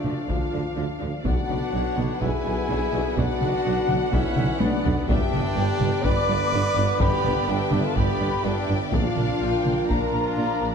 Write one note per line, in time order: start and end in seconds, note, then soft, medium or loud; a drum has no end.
0.00 1.21 F3 medium
0.00 0.28 A3 medium
0.00 0.29 D4 medium
0.00 1.21 D4 medium
0.00 1.21 F4 medium
0.00 1.22 A4 medium
0.00 0.29 D5 medium
0.00 0.30 D5 medium
0.00 1.21 D5 medium
0.00 1.25 F5 medium
0.04 0.14 D2 medium
0.04 0.13 D2 medium
0.04 0.13 D3 medium
0.04 0.12 F3 medium
0.04 0.12 D4 medium
0.04 taiko mid soft
0.28 0.38 D2 medium
0.28 0.37 D2 medium
0.28 0.37 D3 medium
0.28 0.36 F3 medium
0.28 0.36 D4 medium
0.28 1.00 D4 medium
0.28 1.02 F4 medium
0.28 1.02 F5 medium
0.28 1.01 F5 medium
0.28 taiko medium
0.52 0.62 D2 medium
0.52 0.61 D3 medium
0.52 0.61 F3 medium
0.52 0.61 D4 medium
0.76 0.86 D2 medium
0.76 0.85 D3 medium
0.76 0.84 F3 medium
0.76 0.84 D4 medium
0.99 1.11 D2 medium
0.99 1.10 D2 medium
0.99 1.08 D3 medium
0.99 1.07 F3 medium
0.99 1.07 D4 medium
1.24 1.35 B1 medium
1.24 1.33 B2 medium
1.24 4.91 D3 medium
1.24 1.33 F#3 medium
1.24 5.07 B3 medium
1.24 4.91 B3 medium
1.24 1.32 D4 medium
1.24 2.23 D4 medium
1.24 2.17 F#4 loud
1.24 5.10 F#4 medium
1.24 5.07 B4 medium
1.24 1.73 D5 medium
1.24 2.18 F#5 medium
1.24 5.06 F#5 medium
1.24 taiko loud
1.49 1.57 B1 medium
1.49 1.59 B1 medium
1.49 1.58 B2 medium
1.49 1.57 F#3 medium
1.49 1.57 D4 medium
1.49 taiko mid medium
1.73 1.82 B1 medium
1.73 1.82 B2 medium
1.73 1.81 F#3 medium
1.73 1.81 D4 medium
1.73 2.22 C#5 medium
1.97 2.07 B1 medium
1.97 2.06 B1 medium
1.97 2.05 B2 medium
1.97 2.05 F#3 medium
1.97 2.06 D4 medium
1.97 taiko mid medium
2.20 2.31 B1 medium
2.20 2.30 B1 medium
2.20 2.30 B2 medium
2.20 2.30 F#3 medium
2.20 2.30 D4 medium
2.20 3.16 E4 loud
2.20 3.16 G#4 loud
2.20 2.70 B4 medium
2.20 3.17 G#5 loud
2.20 taiko medium
2.45 2.55 B1 medium
2.45 2.53 B2 medium
2.45 2.54 F#3 medium
2.45 2.55 D4 medium
2.69 2.79 B1 medium
2.69 2.77 B2 medium
2.69 2.78 F#3 medium
2.69 2.79 D4 medium
2.69 3.16 E5 medium
2.93 3.03 B1 medium
2.93 3.01 B2 medium
2.93 3.02 F#3 medium
2.93 3.02 D4 medium
3.16 3.26 B1 medium
3.16 3.24 B2 medium
3.16 3.27 F#3 medium
3.16 4.14 D4 loud
3.16 3.27 D4 medium
3.16 4.14 F#4 loud
3.16 3.66 D5 medium
3.16 4.11 F#5 loud
3.16 4.12 F#5 loud
3.16 taiko loud
3.41 3.51 B1 medium
3.41 3.49 B2 medium
3.41 3.49 F#3 medium
3.41 3.49 D4 medium
3.41 taiko mid medium
3.65 3.75 B1 medium
3.65 3.73 B2 medium
3.65 3.73 F#3 medium
3.65 3.73 D4 medium
3.65 5.10 F#5 loud
3.89 3.98 B1 medium
3.89 3.99 B1 medium
3.89 3.97 B2 medium
3.89 3.97 F#3 medium
3.89 3.97 D4 medium
3.89 taiko mid medium
4.10 4.23 B1 medium
4.10 4.22 B1 medium
4.10 4.20 B2 medium
4.10 4.21 F#3 medium
4.10 4.62 C#4 loud
4.10 4.21 D4 medium
4.10 4.60 E4 loud
4.10 4.61 E5 loud
4.10 4.60 E5 medium
4.10 taiko medium
4.36 4.46 B1 medium
4.36 4.45 B1 medium
4.36 4.44 B2 medium
4.36 4.46 F#3 medium
4.36 4.45 D4 medium
4.36 taiko mid medium
4.60 4.69 B1 medium
4.60 4.71 B1 medium
4.60 4.68 B2 loud
4.60 4.69 F#3 medium
4.60 5.08 B3 loud
4.60 5.09 D4 loud
4.60 4.70 D4 medium
4.60 5.09 D5 loud
4.60 taiko high medium
4.85 4.93 B1 medium
4.85 4.95 B1 medium
4.85 4.93 B2 medium
4.85 4.93 F#3 medium
4.85 4.93 D4 medium
4.85 taiko low loud
5.08 5.18 G1 loud
5.08 5.17 G1 loud
5.08 5.16 G2 medium
5.08 8.89 D3 loud
5.08 8.89 B3 medium
5.08 8.89 B3 loud
5.08 5.17 B3 medium
5.08 8.90 D4 loud
5.08 6.06 D4 loud
5.08 5.18 D4 medium
5.08 6.03 G4 loud
5.08 8.89 B4 loud
5.08 10.75 D5 loud
5.08 5.56 E5 loud
5.08 6.03 G5 loud
5.08 5.74 G5 loud
5.08 taiko loud
5.32 5.40 G1 medium
5.32 5.43 G1 medium
5.32 5.40 G2 medium
5.32 5.42 B3 medium
5.32 5.42 D4 medium
5.32 taiko mid medium
5.56 5.64 G1 medium
5.56 5.67 G1 loud
5.56 5.64 G2 medium
5.56 5.66 B3 medium
5.56 5.65 D4 medium
5.56 6.51 D5 loud
5.79 5.87 G1 medium
5.79 5.90 G1 loud
5.79 5.87 G2 medium
5.79 5.90 B3 medium
5.79 5.90 D4 medium
5.79 taiko mid medium
6.03 6.12 G1 medium
6.03 6.15 G1 medium
6.03 6.12 G2 loud
6.03 6.13 B3 medium
6.03 6.13 D4 medium
6.03 7.03 B4 loud
6.03 7.00 D5 loud
6.03 7.01 D6 loud
6.03 7.00 D6 loud
6.03 taiko medium
6.28 6.38 G1 loud
6.28 6.37 G1 medium
6.28 6.36 G2 medium
6.28 6.39 B3 medium
6.28 6.38 D4 medium
6.52 6.62 G1 medium
6.52 6.60 G1 medium
6.52 6.61 G2 medium
6.52 6.63 B3 medium
6.52 6.63 D4 medium
6.52 7.01 B4 loud
6.75 6.83 G1 medium
6.75 6.87 G1 loud
6.75 6.84 G2 medium
6.75 6.86 B3 medium
6.75 6.86 D4 medium
7.00 7.08 G1 loud
7.00 7.11 G1 loud
7.00 7.08 G2 medium
7.00 7.09 B3 medium
7.00 7.09 D4 medium
7.00 7.51 G4 loud
7.00 7.48 B4 loud
7.00 7.48 D5 loud
7.00 7.49 B5 loud
7.00 7.48 B5 loud
7.00 taiko loud
7.24 7.32 G1 medium
7.24 7.35 G1 medium
7.24 7.33 G2 medium
7.24 7.33 B3 medium
7.24 7.33 D4 medium
7.24 taiko mid medium
7.47 7.56 G1 medium
7.47 7.59 G1 medium
7.47 7.57 G2 medium
7.47 7.57 B3 medium
7.47 7.86 D4 loud
7.47 7.57 D4 medium
7.47 7.84 G4 loud
7.47 7.97 E5 loud
7.47 7.85 G5 loud
7.71 7.80 G1 medium
7.71 7.83 G1 medium
7.71 7.80 G2 loud
7.71 7.79 B3 medium
7.71 7.79 D4 medium
7.71 taiko mid medium
7.84 7.97 F4 loud
7.84 7.97 A4 loud
7.84 7.98 A5 loud
7.95 8.07 G1 medium
7.95 8.05 G1 medium
7.95 8.05 G2 loud
7.95 8.04 B3 medium
7.95 8.04 D4 medium
7.95 8.46 G4 loud
7.95 8.44 B4 loud
7.95 8.46 D5 medium
7.95 8.44 B5 loud
7.95 8.44 B5 medium
7.95 taiko medium
8.20 8.31 G1 medium
8.20 8.29 G1 medium
8.20 8.28 G2 medium
8.20 8.28 B3 medium
8.20 8.29 D4 medium
8.43 8.52 G1 medium
8.43 8.55 G1 medium
8.43 8.52 G2 medium
8.43 8.53 B3 medium
8.43 8.79 D4 loud
8.43 8.53 D4 medium
8.43 8.78 G4 loud
8.43 8.92 E5 medium
8.43 8.92 G5 loud
8.43 8.94 G5 loud
8.68 8.78 G1 medium
8.68 8.79 G1 medium
8.68 8.76 G2 medium
8.68 8.78 B3 medium
8.68 8.77 D4 medium
8.91 9.01 A#1 medium
8.91 9.04 A#1 medium
8.91 9.00 A#2 medium
8.91 10.75 F3 medium
8.91 9.01 A#3 medium
8.91 10.75 D4 loud
8.91 10.75 D4 medium
8.91 9.01 D4 medium
8.91 9.60 D4 loud
8.91 10.75 F4 medium
8.91 9.87 F4 loud
8.91 10.75 A#4 loud
8.91 9.41 D5 medium
8.91 9.89 F5 loud
8.91 9.90 F5 loud
8.91 taiko loud
9.16 9.26 A#1 medium
9.16 9.28 A#1 medium
9.16 9.24 A#2 medium
9.16 9.25 A#3 medium
9.16 9.26 D4 medium
9.16 taiko mid medium
9.41 9.50 A#1 medium
9.41 9.53 A#1 medium
9.41 9.49 A#2 medium
9.41 9.51 A#3 medium
9.41 9.50 D4 medium
9.41 9.89 G5 loud
9.65 9.74 A#1 medium
9.65 9.77 A#1 medium
9.65 9.73 A#2 medium
9.65 9.74 A#3 medium
9.65 9.75 D4 medium
9.65 taiko mid medium
9.88 9.98 A#1 medium
9.88 9.99 A#1 medium
9.88 9.97 A#2 medium
9.88 9.99 A#3 medium
9.88 9.99 D4 medium
9.88 10.75 F4 loud
9.88 10.75 A#4 loud
9.88 10.38 F5 medium
9.88 10.75 A#5 medium
9.88 10.75 A#5 loud
9.88 taiko medium
10.13 10.22 A#1 medium
10.13 10.24 A#1 medium
10.13 10.21 A#2 medium
10.13 10.22 A#3 medium
10.13 10.22 D4 medium
10.36 10.48 A#1 medium
10.36 10.47 A#1 medium
10.36 10.44 A#2 medium
10.36 10.46 A#3 medium
10.36 10.45 D4 medium
10.36 10.75 D5 medium
10.61 10.71 A#1 medium
10.61 10.70 A#1 medium
10.61 10.69 A#2 medium
10.61 10.69 A#3 medium
10.61 10.69 D4 medium